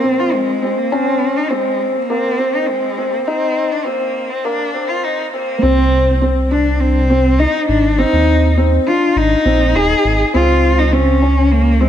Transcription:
0.00 0.55 A#1 loud
0.00 0.21 C4 loud
0.00 0.51 C4 medium
0.19 0.36 F4 medium
0.34 0.79 G#3 medium
0.62 0.86 C4 medium
0.78 0.94 A#3 medium
0.92 2.75 C#2 medium
0.92 1.38 C4 loud
0.92 1.39 C#4 loud
1.37 1.53 D#4 medium
1.51 1.97 G#3 medium
1.51 1.98 C4 medium
1.95 2.12 A#3 medium
2.10 2.33 A#3 medium
2.10 2.56 C4 loud
2.39 2.86 C4 medium
2.55 2.70 D#4 medium
2.69 3.14 G#3 medium
2.98 3.34 D#2 loud
2.98 3.22 C4 medium
3.12 3.27 A#3 medium
3.27 3.73 C4 loud
3.27 3.75 D#4 loud
3.42 4.08 A#1 medium
3.72 3.88 D4 medium
3.86 4.32 A#3 medium
3.86 4.33 C4 medium
4.30 4.46 C4 medium
4.45 4.65 D#2 medium
4.45 4.69 A#3 loud
4.45 4.90 D4 loud
4.74 5.03 F2 loud
4.74 5.21 C4 medium
4.89 5.05 F4 medium
5.04 5.23 A#1 loud
5.04 5.32 D#4 medium
5.32 5.53 D#2 loud
5.32 5.64 A#3 loud
5.32 5.57 C4 medium
5.62 7.46 C2 loud
5.62 6.21 C4 loud
5.62 6.10 C4 medium
6.22 6.45 C4 medium
6.50 6.81 D4 medium
6.50 6.98 D4 medium
6.80 7.41 C4 loud
7.10 7.34 C4 medium
7.39 7.68 D#4 loud
7.39 7.87 D#4 medium
7.68 8.05 G#1 loud
7.68 8.00 D4 loud
7.98 8.45 C4 loud
7.98 8.57 D#4 loud
8.13 8.78 D#2 medium
8.57 8.81 C4 medium
8.87 9.34 D4 medium
8.87 9.18 F4 loud
9.16 9.35 G#1 medium
9.16 9.77 D#4 loud
9.45 9.74 A#1 loud
9.45 9.69 C4 medium
9.75 9.94 D#1 medium
9.75 10.22 D#4 medium
9.75 10.19 G#4 loud
10.04 10.24 G#1 loud
10.34 11.89 C#2 loud
10.34 10.81 C4 medium
10.34 10.80 F4 loud
10.78 10.95 D#4 loud
10.93 11.16 C4 medium
10.93 11.53 C#4 loud
11.22 11.69 C#4 medium
11.52 11.83 A#3 loud
11.81 11.89 G#3 loud
11.81 11.89 C4 medium

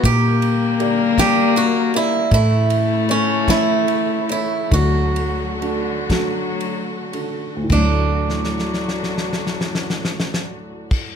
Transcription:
0.03 2.28 A#2 medium
0.03 2.29 D3 medium
0.03 2.29 G3 medium
0.03 2.27 A#3 medium
0.03 2.29 A#3 medium
0.03 2.34 A#3 loud
0.03 1.15 G4 loud
0.03 2.29 A#4 loud
0.03 kick loud
0.03 ride medium
0.42 ride medium
0.80 1.53 G4 medium
0.80 1.17 A#4 soft
0.80 1.17 D5 medium
0.80 ride medium
1.18 1.91 G3 medium
1.18 1.57 G4 loud
1.18 1.92 A#4 medium
1.18 1.92 D5 medium
1.18 kick medium
1.18 snare medium
1.18 ride medium
1.56 1.92 F#4 medium
1.56 ride medium
1.93 2.30 E4 medium
1.93 2.30 G4 medium
1.93 2.30 A#4 medium
1.93 2.31 D5 medium
1.93 ride medium
2.31 4.68 A2 loud
2.31 4.69 C#3 medium
2.31 4.69 E3 medium
2.31 7.66 A3 medium
2.31 4.68 A3 medium
2.31 4.73 A3 loud
2.31 4.69 E4 medium
2.31 3.10 E4 medium
2.31 kick medium
2.31 ride medium
2.70 ride medium
3.09 3.50 C#4 medium
3.09 3.47 E4 medium
3.09 3.48 A4 medium
3.09 3.48 C#5 medium
3.09 ride medium
3.48 4.27 E4 medium
3.48 4.30 E4 medium
3.48 4.28 A4 medium
3.48 4.27 C#5 medium
3.48 kick medium
3.48 snare loud
3.48 ride medium
3.88 ride medium
4.29 4.70 E4 medium
4.29 4.73 E4 medium
4.29 4.71 A4 soft
4.29 4.71 C#5 medium
4.29 ride medium
4.71 7.67 D2 medium
4.71 7.67 D3 medium
4.71 7.68 D3 medium
4.71 5.63 F#3 medium
4.71 7.68 F#3 medium
4.71 7.68 F#4 medium
4.71 7.11 F#4 medium
4.71 kick loud
4.71 ride medium
5.16 ride medium
5.61 6.12 D3 medium
5.61 6.08 D4 medium
5.61 6.08 F#4 medium
5.61 6.09 A4 medium
5.61 ride soft
6.09 7.14 F#3 loud
6.09 7.10 D4 medium
6.09 7.11 F#4 soft
6.09 7.11 A4 medium
6.09 kick medium
6.09 snare medium
6.09 ride medium
6.60 ride soft
7.13 7.69 D4 soft
7.13 7.69 F#4 soft
7.13 7.69 A4 medium
7.13 ride medium
7.56 11.04 D2 medium
7.63 11.07 A2 medium
7.69 11.11 D2 medium
7.69 11.11 D3 medium
7.69 11.11 F#3 medium
7.69 11.10 A3 medium
7.69 11.12 D4 medium
7.69 11.11 F#4 medium
7.69 kick medium
7.69 crash medium
7.78 11.14 F#3 medium
7.85 11.16 A3 medium
8.30 snare soft
8.44 snare soft
8.59 snare soft
8.74 snare soft
8.88 snare soft
9.03 snare soft
9.18 snare medium
9.33 snare medium
9.47 snare medium
9.61 snare medium
9.75 snare medium
9.90 snare medium
10.05 snare medium
10.20 snare medium
10.34 snare medium
10.91 kick loud
10.91 crash medium

